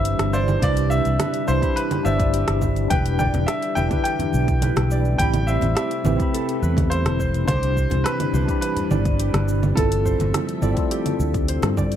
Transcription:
Already playing: G1 C3 E3 G3 D4 E4 G4 B4 C5 D5 E5 B5
0.05 closed hi-hat, shaker
0.19 G1, cross-stick, closed hi-hat
0.33 C5 D5, shaker
0.48 low conga, shaker
0.59 C2 D4 E4 G4, kick, closed hi-hat, shaker
0.63 B4 D5
0.77 closed hi-hat, shaker
0.90 E5, shaker
1.05 C2, closed hi-hat, shaker
1.20 B4, cross-stick, closed hi-hat, low conga, shaker
1.34 closed hi-hat, shaker
1.46 C2 D4 E4 G4 B4 C5, shaker
1.60 D4 E4 G4 B5, kick, closed hi-hat, shaker
1.76 B4, closed hi-hat, shaker
1.91 closed hi-hat, low conga, shaker
2.03 G1 D4 E4 G4 C5 D5 E5, shaker
2.16 D4 E4 G4, kick, closed hi-hat, shaker
2.21 D5
2.34 G4, closed hi-hat, shaker
2.48 G1, cross-stick, closed hi-hat
2.62 kick, low conga, shaker
2.76 closed hi-hat, shaker
2.88 E1 D3 E3 D4 E4 G4 B4 G5, kick, closed hi-hat, high conga, shaker
2.93 B4
3.06 closed hi-hat, shaker
3.19 D5 G5, kick, low conga, shaker
3.34 E1, closed hi-hat, high conga, low conga, shaker
3.47 E5, cross-stick, closed hi-hat, shaker
3.62 closed hi-hat, shaker
3.75 E1 D4 E4 G4 B4 E5 G5, high conga, shaker
3.88 D4 E4 G4, kick, closed hi-hat, low conga, shaker
3.93 B4
4.04 G4 G5, closed hi-hat, shaker
4.19 closed hi-hat, low conga, shaker
4.33 B1, high conga, shaker
4.48 kick, closed hi-hat, shaker
4.62 B4, closed hi-hat, low conga, shaker
4.76 B1, cross-stick, closed hi-hat, high conga
4.91 D5, shaker
5.05 shaker
5.16 A1 C3 A3 C4 E4 G4 G5, kick, closed hi-hat, high conga, shaker
5.21 B5
5.34 closed hi-hat, low conga, shaker
5.47 C5 E5, shaker
5.61 A1, closed hi-hat, high conga, low conga, shaker
5.75 G4 E5, cross-stick, closed hi-hat, shaker
5.91 closed hi-hat, shaker
6.04 A1 C4 E4 G4 B4, high conga, low conga, shaker
6.17 C4 E4 G4, kick, closed hi-hat, shaker
6.22 B5
6.34 A4, closed hi-hat, shaker
6.49 closed hi-hat, shaker
6.62 E2 B4, high conga, shaker
6.77 kick, closed hi-hat, low conga, shaker
6.90 C5, closed hi-hat, shaker
7.05 E1, cross-stick, closed hi-hat, high conga
7.20 C5, kick, shaker
7.34 closed hi-hat, shaker
7.45 C2 E3 G3 D4 E4 G4 C5, kick, closed hi-hat, high conga, low conga, shaker
7.50 C5
7.63 closed hi-hat, shaker
7.77 kick, shaker
7.90 C2, closed hi-hat, high conga, low conga, shaker
8.04 B4, cross-stick, closed hi-hat, shaker
8.20 closed hi-hat, low conga, shaker
8.33 C2 D4 E4 G4 B4 C5, high conga, shaker
8.46 D4 E4 G4, kick, closed hi-hat, shaker
8.51 B5
8.61 B4, closed hi-hat, shaker
8.76 closed hi-hat, low conga, shaker
8.91 G1 D5, high conga, low conga, shaker
9.05 kick, closed hi-hat, shaker
9.19 G4, closed hi-hat, shaker
9.34 G1, cross-stick, closed hi-hat, high conga
9.48 shaker
9.63 low conga, shaker
9.73 G1 F3 A3 C4 E4 F4 A4, kick, closed hi-hat, shaker
9.77 A4 E5, high conga
9.92 closed hi-hat, shaker
10.05 C5, kick, shaker
10.20 G1, closed hi-hat, high conga, low conga, shaker
10.34 cross-stick, closed hi-hat, low conga, shaker
10.49 closed hi-hat, shaker
10.61 G1 C4 E4 F4 A4 D5, high conga, shaker
10.74 C4 E4 F4, kick, closed hi-hat, shaker
10.79 A4
10.91 G4, closed hi-hat, shaker
11.06 closed hi-hat, low conga, shaker
11.20 D2, high conga, shaker
11.34 kick, closed hi-hat, shaker
11.48 C5, closed hi-hat, shaker
11.62 G2, cross-stick, closed hi-hat, high conga, shaker
11.77 D5, kick, low conga, shaker
11.92 closed hi-hat, shaker

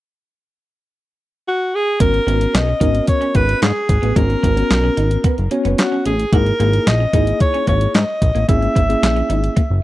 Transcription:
1.48 F#4
1.75 G#4
2.00 G#1 G#3 B3 C#4 F#4 A#4, kick, closed hi-hat
2.14 muted clean electric guitar stroke, closed hi-hat
2.27 G#1 B3 C#4 F#4 A#4, closed hi-hat
2.41 closed hi-hat
2.53 B1 D#5, muted clean electric guitar stroke, snare, clap, closed hi-hat
2.67 C#4
2.80 G#1 B3 C#4 D#4 F#4 A#4, kick, closed hi-hat
2.95 closed hi-hat
3.07 C#5, muted clean electric guitar stroke, kick, closed hi-hat
3.21 C#4, closed hi-hat
3.35 G#1 B3 B4, kick, closed hi-hat
3.49 closed hi-hat
3.62 G#2 G#3 G#4, snare, clap, closed hi-hat
3.89 G#1, muted clean electric guitar stroke, kick, closed hi-hat
4.02 A1 B3, closed hi-hat
4.16 G#1 G#3 B3 C#4 F#4 A#4, kick, closed hi-hat
4.30 muted clean electric guitar stroke, closed hi-hat
4.43 G#1 B3, kick, closed hi-hat
4.57 B3 C#4 F#4 A#4, closed hi-hat
4.71 B1, snare, clap, closed hi-hat
4.84 C#4
4.97 G#1 D#4, closed hi-hat
5.11 closed hi-hat
5.24 B3, kick, closed hi-hat
5.38 F#1, closed hi-hat
5.51 B3 C#4 F#4 C#5, muted clean electric guitar stroke, closed hi-hat
5.65 F#1 B3, closed hi-hat
5.78 F#4, muted clean electric guitar stroke, snare, clap, closed hi-hat
5.92 C#4
6.05 A1 C#4 G#4, closed hi-hat
6.19 closed hi-hat
6.33 G#1 A#3 D#4 E4 F#4 G#4 A#4, kick, closed hi-hat
6.46 muted clean electric guitar stroke, closed hi-hat
6.60 G#1 A#3 D#4 E4 G#4, closed hi-hat
6.73 closed hi-hat
6.87 A#1 D#5, snare, clap, closed hi-hat
7.00 C#4
7.13 G#1 A#3 D#4 E4 G#4, kick, closed hi-hat
7.27 closed hi-hat
7.40 C#5, muted clean electric guitar stroke, kick, closed hi-hat
7.54 C#4, closed hi-hat
7.67 G#1 A#3 C#5, kick, closed hi-hat
7.81 closed hi-hat
7.94 G#2 G#3 D#5, snare, clap, closed hi-hat
8.22 A#1, muted clean electric guitar stroke, kick, closed hi-hat
8.35 A1 A#3, closed hi-hat
8.48 G#1 G#3 A#3 C#4 E4 G#4 E5, kick, closed hi-hat
8.62 muted clean electric guitar stroke, closed hi-hat
8.75 G#1 A#3, kick, closed hi-hat
8.89 A#3 C#4 E4 G#4, closed hi-hat
9.03 A#1, snare, clap, closed hi-hat
9.16 C#4, closed hi-hat
9.30 G#1 D#4, closed hi-hat
9.44 closed hi-hat
9.56 A#3, kick, closed hi-hat
9.70 F#1

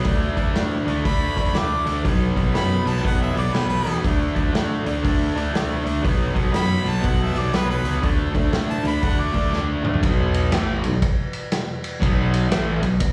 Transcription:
0.04 D2 D3 A3 D4, kick, open hi-hat
0.36 D2 D3 A3 D4, kick, open hi-hat
0.54 A2 D3 A3 D4, snare, open hi-hat
0.85 D2 D3 A3 D4, open hi-hat
1.04 D2 D3 A3 D4 B5, kick, open hi-hat
1.35 D2 D3 A3 D4, kick, open hi-hat
1.54 D2 D3 A3 D4 D6, snare, open hi-hat
1.86 D2 D3 A3 D4, open hi-hat
2.03 B1 B2 F#3 B3, kick, open hi-hat
2.35 B1 B2 F#3 B3, kick, open hi-hat
2.53 F#2 B2 F#3 B3 B5, snare, open hi-hat
2.85 B1 B2 F#3 B3 A5, open hi-hat
2.97 snare
3.03 B1 B2 F#3 B3 F#5, kick, open hi-hat
3.22 E5
3.34 B1 B2 F#3 B3 D5, open hi-hat
3.53 B1 B2 F#3 B3 B4, snare, open hi-hat
3.69 B4
3.85 E2 B2 F#3 B3, open hi-hat
4.03 D2 D3 A3 D4, kick, open hi-hat
4.35 D2 D3 A3 D4, kick, open hi-hat
4.53 A2 D3 A3 D4, snare, open hi-hat
4.85 D2 D3 A3 D4, open hi-hat
5.03 D2 D3 A3 D4, kick, open hi-hat
5.35 D2 D3 A3 D4, open hi-hat
5.53 D2 D3 A3 D4, snare, open hi-hat
5.83 D2 D3 A3 D4, open hi-hat
6.03 B1 B2 F#3 B3, kick, open hi-hat
6.34 B1 B2 F#3 B3, kick, open hi-hat
6.52 F#2 B2 F#3 B3 B5, snare, open hi-hat
6.84 B1 B2 F#3 B3, open hi-hat
6.89 A5
7.02 B1 B2 F#3 B3, kick, open hi-hat
7.06 F#5
7.23 E5
7.33 B1 B2 F#3 B3, open hi-hat
7.38 D5
7.52 B1 B2 F#3 B3 B4, snare, open hi-hat
7.70 B4
7.83 C#2 B2 F#3 B3, open hi-hat
8.01 D2 D3 A3 D4, kick, open hi-hat
8.33 D2 D3 A3 D4, kick, open hi-hat
8.52 A2 D3 A3 D4, snare, open hi-hat
8.70 A5
8.83 D2 D3 A3 D4 B5, open hi-hat
9.02 D2 D3 A3 D4 F#5, kick, open hi-hat
9.20 D5
9.33 D2 D3 A3 D4, kick, open hi-hat
9.52 D2 D3 A3 D4, snare
9.83 D2 D3 A3 D4, mid tom
9.94 floor tom
10.02 B1 B2 F#3 B3, kick, ride
10.34 ride
10.52 A1 A2 E3 A3, snare, ride
10.83 B1 B2 F#3, ride
11.02 kick, ride
11.33 ride
11.52 snare, ride
11.84 ride
12.00 B1 B2 F#3 B3, kick, ride
12.34 ride
12.50 A1 A2 E3 A3, snare, ride
12.81 B1 B2 F#3, ride
13.00 kick, ride

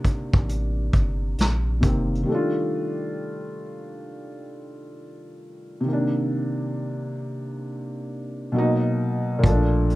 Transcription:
Already playing: C3 D#3 A#3 D4
0.04 kick, closed hi-hat
0.33 A1, kick
0.49 closed hi-hat
0.93 G1, kick, closed hi-hat
1.38 A#1, snare, closed hi-hat
1.81 F#1 C3 D#3 A#3, kick, closed hi-hat
1.87 C4
2.15 closed hi-hat
2.23 D#3 G3
2.29 A3 D4
2.34 F4
5.81 C3
5.85 D#3 A#3
5.93 D4
8.52 B2 F#3 A#3
8.58 D#4
9.39 A#2
9.43 A#1 F3 A3, kick, closed hi-hat
9.51 D4
9.90 closed hi-hat

